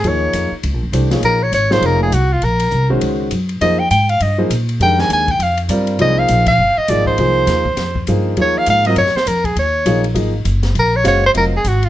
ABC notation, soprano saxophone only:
X:1
M:4/4
L:1/8
Q:"Swing" 1/4=202
K:Fphr
V:1 name="Soprano saxophone"
d3 z4 z | B d d c B A G F | B3 z4 z | e =g g f e z3 |
=g a a g f z3 | e f2 f2 e =d c- | c6 z2 | d f f e d c B A |
d3 z4 z | B d d c B A G F |]